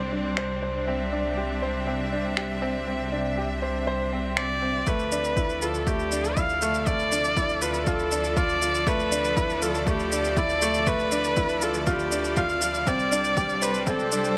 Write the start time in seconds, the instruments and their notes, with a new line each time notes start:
Already playing: detuned saw bass C2, string section G3 C4 D4 D5, upright piano C4 D4 G4 C5
0.13 upright piano D4
0.37 upright piano C5, finger snap
0.62 upright piano C5
0.87 upright piano C4, string section E5
1.12 upright piano D4
1.37 upright piano G4
1.62 upright piano C5
1.87 upright piano C4
2.12 upright piano D4
2.37 upright piano G4, finger snap
2.62 upright piano C4
2.87 upright piano C4
3.12 upright piano D4
3.38 upright piano G4
3.62 upright piano C5
3.87 upright piano C5
4.12 upright piano C4
4.37 upright piano C4, viola D5, finger snap
4.62 upright piano C4
4.87 detuned saw bass D2, string section F3, upright piano A3, viola B4, kick, shaker
4.99 shaker
5.12 upright piano D4, shaker
5.24 shaker
5.37 upright piano E4, string section D5, kick, shaker
5.49 shaker
5.59 upright piano F4, string section A4, viola A4, shaker
5.74 shaker
5.87 upright piano A3, viola G4, kick, shaker
5.99 shaker
6.12 upright piano D4, shaker
6.24 shaker
6.37 upright piano E4, viola F5, kick, shaker
6.49 shaker
6.62 upright piano A3, shaker
6.74 shaker
6.87 upright piano A3, viola D5, kick, shaker
6.99 shaker
7.12 upright piano D4, shaker
7.24 shaker
7.37 upright piano E4, kick, shaker
7.49 shaker
7.62 upright piano F4, viola B4, shaker
7.74 shaker
7.86 upright piano F4, viola A4, kick, shaker
7.99 shaker
8.11 upright piano D4, shaker
8.24 shaker
8.37 upright piano F4, viola D5, kick, shaker
8.49 shaker
8.62 upright piano F4, shaker
8.75 shaker
8.87 upright piano A3, viola B4, kick, shaker
9.00 shaker
9.12 upright piano D4, shaker
9.24 shaker
9.37 upright piano E4, kick, shaker
9.50 shaker
9.62 upright piano F4, viola A4, shaker
9.75 shaker
9.87 upright piano A3, viola G4, kick, shaker
10.00 shaker
10.12 upright piano D4, shaker
10.25 shaker
10.37 upright piano E4, viola D5, kick, shaker
10.49 shaker
10.62 upright piano A3, shaker
10.74 shaker
10.87 upright piano A3, viola B4, kick, shaker
10.99 shaker
11.12 upright piano D4, shaker
11.24 shaker
11.37 upright piano E4, kick, shaker
11.49 shaker
11.62 upright piano F4, viola A4, shaker
11.74 shaker
11.87 upright piano F4, viola G4, kick, shaker
11.99 shaker
12.12 upright piano D4, shaker
12.24 shaker
12.37 upright piano F4, viola F5, kick, shaker
12.49 shaker
12.62 upright piano F4, shaker
12.74 shaker
12.87 detuned saw bass C2, string section G3, upright piano C4, viola D5, kick, shaker
12.99 shaker
13.12 upright piano D4, shaker
13.17 string section D4
13.24 shaker
13.37 upright piano G4, kick, shaker
13.49 shaker
13.59 string section C5, upright piano C5, shaker
13.63 viola B4
13.74 shaker
13.87 upright piano C4, viola A4, kick, shaker
13.99 shaker
14.12 upright piano D4, shaker
14.24 shaker